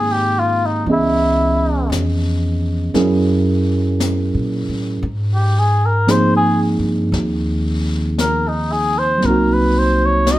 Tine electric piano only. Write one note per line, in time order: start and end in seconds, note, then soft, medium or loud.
0.00 0.88 D#3 soft
0.00 0.88 G#3 soft
0.00 0.87 A#3 soft
0.00 0.88 C4 soft
0.00 0.89 D#4 soft
0.00 0.89 G4 soft
0.00 0.89 G#4 soft
0.86 2.95 E3 soft
0.86 2.96 B3 soft
0.86 2.93 C#4 soft
0.86 2.97 D#5 soft
0.91 2.94 G#4 medium
2.94 5.04 F#3 medium
2.94 5.04 C#4 medium
2.94 5.04 E4 medium
2.94 5.04 G#4 medium
2.94 5.03 A#4 medium
6.07 9.21 F3 medium
6.07 9.19 A#3 medium
6.07 9.22 C4 soft
6.07 9.22 D#4 soft
6.07 9.22 G#4 medium
9.18 10.39 F#3 soft
9.18 10.39 A#3 soft
9.24 10.39 C4 soft
9.24 10.39 D#4 soft
9.30 10.39 F#4 medium